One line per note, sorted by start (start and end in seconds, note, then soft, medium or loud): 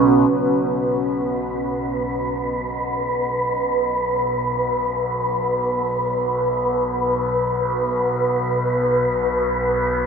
0.00 0.28 B1 medium
0.00 0.28 B2 medium
0.00 0.29 C#4 medium
0.00 0.29 F#4 medium
0.00 0.29 B4 medium
0.29 10.06 B1 medium
0.29 10.06 B2 medium
0.29 10.06 B4 medium